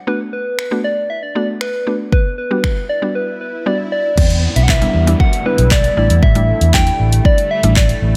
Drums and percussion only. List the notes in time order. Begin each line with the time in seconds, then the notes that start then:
0.59 finger snap
1.61 finger snap
2.12 kick
2.64 finger snap, kick
4.18 kick, crash
4.30 closed hi-hat
4.56 closed hi-hat
4.69 kick, clap
4.82 closed hi-hat
5.07 closed hi-hat
5.20 kick
5.33 closed hi-hat
5.58 closed hi-hat
5.71 kick, clap
5.84 closed hi-hat
6.10 closed hi-hat
6.23 kick
6.35 closed hi-hat
6.61 closed hi-hat
6.74 kick, clap
6.87 closed hi-hat
7.13 closed hi-hat
7.25 kick
7.38 closed hi-hat
7.63 closed hi-hat
7.76 kick, clap
7.89 closed hi-hat